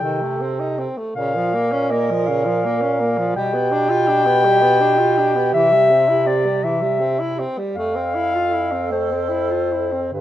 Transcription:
Already playing: clarinet G5
0.01 bass clarinet C3, tenor saxophone D#3, alto saxophone A4
0.22 tenor saxophone A3
0.41 tenor saxophone C4
0.60 tenor saxophone D#4
0.78 tenor saxophone C4
0.97 tenor saxophone A3
1.16 bass clarinet A#2, tenor saxophone C#3, alto saxophone A#4, clarinet F5
1.36 tenor saxophone F3
1.54 tenor saxophone A#3
1.72 tenor saxophone C#4
1.90 tenor saxophone A#3, clarinet D#5
2.11 tenor saxophone F3
2.27 tenor saxophone C#3, clarinet F5
2.46 tenor saxophone F3
2.65 tenor saxophone A#3
2.82 tenor saxophone C#4
3.00 tenor saxophone A#3
3.18 tenor saxophone F3
3.35 bass clarinet B2, tenor saxophone G3, alto saxophone G4, clarinet G5
3.54 tenor saxophone B3
3.72 tenor saxophone D4
3.89 tenor saxophone F4
4.08 tenor saxophone D4
4.26 tenor saxophone B3
4.45 tenor saxophone G3
4.62 tenor saxophone B3
4.80 tenor saxophone D4
4.98 tenor saxophone F4
5.18 tenor saxophone D4
5.35 tenor saxophone B3
5.54 bass clarinet C3, tenor saxophone E3, clarinet E5
5.72 tenor saxophone G3
5.90 tenor saxophone C4
6.09 tenor saxophone E4
6.27 tenor saxophone C4, clarinet D5
6.46 tenor saxophone G3
6.63 tenor saxophone E3, clarinet E5
6.82 tenor saxophone G3
7.00 tenor saxophone C4
7.19 tenor saxophone E4
7.39 tenor saxophone C4
7.58 tenor saxophone G3
7.76 bass clarinet F2, tenor saxophone A3, alto saxophone A4, clarinet F5
7.95 tenor saxophone C4
8.15 tenor saxophone E4
8.35 tenor saxophone F4
8.53 tenor saxophone E4
8.72 tenor saxophone C4
8.91 tenor saxophone A3, clarinet C5
9.12 tenor saxophone C4
9.29 tenor saxophone E4
9.51 tenor saxophone F4
9.72 tenor saxophone E4
9.92 tenor saxophone C4
10.12 bass clarinet G2, tenor saxophone D3, alto saxophone G4, clarinet B4

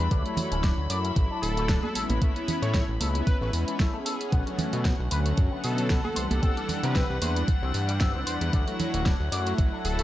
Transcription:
Already playing: string section B5
0.10 analog synth bass D2, analog synth pad F#3 A3 E4 C#5, clean electric guitar D4, kick, closed hi-hat
0.25 clean electric guitar A3, closed hi-hat
0.37 open hi-hat, low conga
0.51 analog synth bass D1, analog synth pad F#3 A3 C#4 E4, clean electric guitar C#4, closed hi-hat
0.63 clean electric guitar D4, kick, snare, closed hi-hat
0.78 analog synth bass D2
0.90 analog synth bass F#2, analog synth pad F#3 A3 E4, clean electric guitar D5, open hi-hat
1.04 clean electric guitar C#4, closed hi-hat
1.16 analog synth bass A1, kick, closed hi-hat
1.30 analog synth pad F#3 A3 E4, clean electric guitar D4
1.42 analog synth bass D1, analog synth lead A4, open hi-hat
1.57 clean electric guitar A3, closed hi-hat
1.68 analog synth pad F#3 A3 C#4 E4, clean electric guitar D4, kick, snare, closed hi-hat
1.83 analog synth pad G#3 B3 C#4 E4, clean electric guitar D4, analog synth lead A4, high conga
1.95 analog synth bass A1, clean electric guitar A4, open hi-hat
2.09 analog synth bass A1, closed hi-hat, high conga
2.21 clean electric guitar A3, analog synth pad B3 C#4 E4, kick, closed hi-hat
2.36 clean electric guitar E3, closed hi-hat
2.48 open hi-hat, low conga
2.62 analog synth bass A2, analog synth pad G#3 B3 C#4 E4, clean electric guitar G#3, analog synth lead C#5, closed hi-hat
2.74 clean electric guitar A3, analog synth lead C#5, kick, snare, closed hi-hat
2.89 analog synth bass A1
3.00 analog synth bass C#2, analog synth pad B3 C#4 E4, clean electric guitar A4, open hi-hat, high conga
3.14 clean electric guitar G#3, closed hi-hat
3.26 analog synth lead B4, kick, closed hi-hat
3.41 analog synth bass A1, analog synth pad G#3 B3 C#4 E4, clean electric guitar A3, analog synth lead B4
3.53 analog synth bass E2, analog synth pad G#3 B3 C#4 E4, open hi-hat
3.67 clean electric guitar E3, analog synth pad G#3 B3 C#4 E4, closed hi-hat
3.79 clean electric guitar A3, kick, snare, closed hi-hat
3.93 clean electric guitar A3, analog synth pad B3 C#4 G#4
4.05 clean electric guitar A4, open hi-hat
4.21 closed hi-hat
4.32 analog synth bass B1, analog synth pad D3 F#3 A3 C#4, clean electric guitar B3, string section F#5, kick, closed hi-hat
4.46 clean electric guitar F#3, closed hi-hat
4.58 open hi-hat, low conga
4.73 analog synth bass B2, analog synth pad D3 F#3 A3 C#4, clean electric guitar A3, closed hi-hat
4.85 clean electric guitar B3, kick, snare, closed hi-hat
5.00 analog synth bass B1
5.11 analog synth bass D2, analog synth pad D3 F#3 A3 C#4, clean electric guitar B4, open hi-hat
5.25 clean electric guitar A3, closed hi-hat
5.37 analog synth bass F#2, kick, closed hi-hat
5.51 analog synth pad D3 F#3 A3 C#4, clean electric guitar B3
5.64 analog synth bass B2, analog synth lead A4, open hi-hat
5.78 clean electric guitar F#3, closed hi-hat
5.89 analog synth pad D3 F#3 A3 C#4, clean electric guitar B3, kick, snare, closed hi-hat
6.04 analog synth pad E3 G3 B3 D4, clean electric guitar B3, analog synth lead A4, high conga
6.16 analog synth bass C2, clean electric guitar C5, open hi-hat
6.31 analog synth bass C2, analog synth lead A4, closed hi-hat, high conga
6.42 analog synth pad E3 G3 D4, clean electric guitar C4, kick, closed hi-hat
6.57 clean electric guitar G3, closed hi-hat
6.69 open hi-hat, low conga
6.83 analog synth bass C3, analog synth pad E3 G3 B3 D4, clean electric guitar B3, analog synth lead B4, closed hi-hat
6.95 clean electric guitar C4, kick, snare, closed hi-hat
7.10 analog synth bass C2
7.21 analog synth bass E2, analog synth pad E3 G3 D4, clean electric guitar C5, open hi-hat, high conga
7.36 clean electric guitar B3, closed hi-hat
7.48 kick, closed hi-hat
7.62 analog synth bass C2, analog synth pad E3 G3 D4, clean electric guitar C4
7.74 analog synth bass G2, open hi-hat
7.89 clean electric guitar G3, closed hi-hat
8.00 analog synth pad E3 G3 B3 D4, clean electric guitar C4, kick, snare, closed hi-hat
8.15 analog synth bass C2, analog synth pad E3 G3 D4 B4, clean electric guitar C4
8.27 analog synth bass E2, clean electric guitar C5, open hi-hat
8.41 analog synth bass E2, closed hi-hat
8.53 analog synth bass D2, analog synth pad F#3 A3 E4 C#5, clean electric guitar D4, kick, closed hi-hat
8.67 clean electric guitar A3, closed hi-hat
8.80 open hi-hat, low conga
8.93 analog synth bass D1, analog synth pad F#3 A3 C#4 E4, clean electric guitar C#4, closed hi-hat
9.05 clean electric guitar D4, kick, snare, closed hi-hat
9.20 analog synth bass D2
9.32 analog synth bass F#2, analog synth pad F#3 A3 E4, clean electric guitar D5, open hi-hat
9.46 clean electric guitar C#4, closed hi-hat
9.58 analog synth bass A1, kick, closed hi-hat
9.72 analog synth pad F#3 A3 E4, clean electric guitar D4
9.84 analog synth bass D1, analog synth lead A4, open hi-hat
9.99 clean electric guitar A3, closed hi-hat

